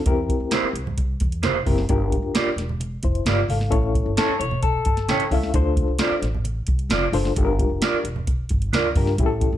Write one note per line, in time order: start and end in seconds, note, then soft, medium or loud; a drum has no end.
0.06 0.35 E2 medium
0.06 0.79 C4 medium
0.06 0.79 E4 medium
0.06 0.80 G4 medium
0.06 0.80 A#4 medium
0.06 kick loud
0.06 closed hi-hat medium
0.06 muted conga soft
0.29 kick medium
0.29 closed hi-hat soft
0.40 0.50 D2 medium
0.51 0.64 A#3 medium
0.51 0.65 E4 medium
0.51 0.65 G4 medium
0.51 0.65 C5 medium
0.51 snare loud
0.51 closed hi-hat medium
0.51 high conga medium
0.63 muted upright bass stroke soft
0.73 1.12 C2 medium
0.73 closed hi-hat medium
0.87 low conga medium
0.98 kick medium
0.98 closed hi-hat medium
0.98 muted conga soft
1.20 1.44 E2 medium
1.20 kick medium
1.20 closed hi-hat medium
1.20 muted conga soft
1.32 closed hi-hat soft
1.42 1.62 F1 medium
1.42 1.56 A#3 medium
1.42 1.56 E4 medium
1.42 1.57 G4 medium
1.42 1.57 C5 medium
1.42 snare medium
1.42 closed hi-hat medium
1.42 high conga medium
1.66 1.85 F#1 medium
1.66 1.85 C4 medium
1.66 1.85 E4 medium
1.66 1.85 G4 medium
1.66 1.85 A#4 medium
1.66 kick medium
1.66 open hi-hat soft
1.66 high conga medium
1.78 snare soft
1.89 2.18 G1 loud
1.89 2.62 D4 medium
1.89 2.62 F4 medium
1.89 2.62 G4 medium
1.89 2.62 A#4 medium
1.89 kick loud
1.89 closed hi-hat medium
1.89 muted conga soft
2.12 kick medium
2.12 closed hi-hat medium
2.23 2.32 F1 medium
2.35 2.47 A#3 medium
2.35 2.48 F4 medium
2.35 2.48 G4 medium
2.35 2.48 D5 medium
2.35 snare loud
2.35 closed hi-hat loud
2.35 high conga medium
2.46 muted upright bass stroke soft
2.56 2.95 E1 medium
2.56 snare soft
2.56 closed hi-hat medium
2.69 low conga medium
2.80 closed hi-hat medium
2.80 muted conga soft
3.03 3.22 F1 medium
3.03 3.25 E4 soft
3.03 3.26 C5 medium
3.03 kick medium
3.03 closed hi-hat medium
3.03 muted conga soft
3.15 closed hi-hat soft
3.25 3.45 G1 medium
3.25 3.39 A#3 medium
3.25 3.48 F4 medium
3.25 3.39 F4 medium
3.25 3.40 G4 medium
3.25 3.48 D5 medium
3.25 3.40 D5 medium
3.25 snare loud
3.25 closed hi-hat medium
3.25 high conga medium
3.49 3.68 G#1 medium
3.49 3.70 A4 medium
3.49 3.93 F5 medium
3.49 open hi-hat medium
3.49 high conga medium
3.61 snare soft
3.70 4.00 A1 loud
3.70 4.44 C#4 medium
3.70 4.44 E4 medium
3.70 4.44 A4 medium
3.70 4.44 C#5 medium
3.70 kick loud
3.70 closed hi-hat medium
3.70 muted conga soft
3.95 kick medium
3.95 closed hi-hat soft
4.06 4.15 G1 medium
4.17 4.30 C#4 medium
4.17 4.31 E4 medium
4.17 4.39 A4 medium
4.17 4.31 A4 medium
4.17 4.31 C#5 loud
4.17 snare loud
4.17 closed hi-hat medium
4.17 high conga medium
4.29 muted upright bass stroke soft
4.39 4.78 E1 medium
4.39 4.61 C#5 medium
4.39 closed hi-hat medium
4.51 low conga medium
4.63 5.28 A4 medium
4.63 kick medium
4.63 closed hi-hat medium
4.63 muted conga medium
4.85 5.05 G1 medium
4.85 5.08 A5 medium
4.85 kick loud
4.85 closed hi-hat medium
4.97 snare soft
4.97 closed hi-hat soft
5.08 5.18 A1 medium
5.08 5.22 C#4 medium
5.08 5.22 E4 medium
5.08 5.22 A4 medium
5.08 5.22 C#5 medium
5.08 5.30 G5 medium
5.08 snare medium
5.08 closed hi-hat medium
5.08 high conga medium
5.20 closed hi-hat soft
5.31 5.50 C#2 medium
5.31 5.50 C#4 medium
5.31 5.50 E4 medium
5.31 5.50 A4 medium
5.31 5.51 E5 medium
5.31 5.53 F5 medium
5.31 kick medium
5.31 open hi-hat soft
5.31 high conga medium
5.43 snare soft
5.54 5.83 D2 loud
5.54 6.27 D4 medium
5.54 5.60 E4 medium
5.54 6.28 A4 medium
5.54 6.28 C5 medium
5.54 kick loud
5.54 closed hi-hat medium
5.54 muted conga soft
5.60 6.30 F4 medium
5.77 kick medium
5.77 closed hi-hat medium
5.88 5.98 C2 medium
5.99 6.12 C4 medium
5.99 6.13 F4 medium
5.99 6.13 A4 medium
5.99 6.13 D5 loud
5.99 snare loud
5.99 closed hi-hat loud
5.99 high conga medium
6.11 muted upright bass stroke soft
6.22 6.60 A1 medium
6.22 snare soft
6.22 closed hi-hat medium
6.34 low conga medium
6.45 closed hi-hat medium
6.45 muted conga soft
6.67 6.87 C2 medium
6.67 kick loud
6.67 closed hi-hat medium
6.67 muted conga soft
6.79 closed hi-hat soft
6.90 7.09 F1 medium
6.90 7.04 C4 medium
6.90 7.04 F4 medium
6.90 7.04 A4 medium
6.90 7.05 D5 medium
6.90 snare medium
6.90 closed hi-hat medium
6.90 high conga medium
7.13 7.32 F#1 medium
7.13 7.32 D4 medium
7.13 7.32 F4 medium
7.13 7.32 A4 medium
7.13 7.32 C5 medium
7.13 open hi-hat medium
7.13 high conga medium
7.25 snare soft
7.36 7.65 G1 loud
7.36 8.10 D4 medium
7.36 8.10 F4 medium
7.36 8.10 G4 medium
7.36 7.43 A4 medium
7.36 kick loud
7.36 closed hi-hat medium
7.36 muted conga soft
7.45 8.13 A#4 medium
7.59 kick medium
7.59 closed hi-hat medium
7.69 7.80 F1 medium
7.82 7.95 D4 medium
7.82 7.95 F4 medium
7.82 7.96 A#4 medium
7.82 7.96 D5 medium
7.82 snare loud
7.82 closed hi-hat loud
7.82 high conga medium
7.93 muted upright bass stroke soft
8.04 8.42 E1 medium
8.04 closed hi-hat medium
8.16 low conga medium
8.27 kick loud
8.27 closed hi-hat medium
8.27 muted conga medium
8.49 8.70 G1 medium
8.49 kick medium
8.49 closed hi-hat medium
8.49 muted conga soft
8.62 closed hi-hat soft
8.73 8.92 D2 medium
8.73 8.86 D4 medium
8.73 8.87 F4 medium
8.73 8.87 A#4 medium
8.73 8.87 D5 medium
8.73 snare loud
8.73 closed hi-hat medium
8.73 high conga medium
8.96 9.15 G2 loud
8.96 9.15 D4 medium
8.96 9.15 F4 medium
8.96 9.15 G4 medium
8.96 9.15 A#4 medium
8.96 kick medium
8.96 open hi-hat medium
8.96 high conga medium
9.07 snare soft
9.18 9.47 A1 loud
9.18 9.58 C#4 medium
9.18 9.58 E4 medium
9.18 9.58 G4 medium
9.18 9.25 G#4 medium
9.18 kick loud
9.18 closed hi-hat medium
9.18 muted conga soft
9.26 9.58 A4 medium
9.41 kick medium
9.41 closed hi-hat medium
9.52 9.58 G1 medium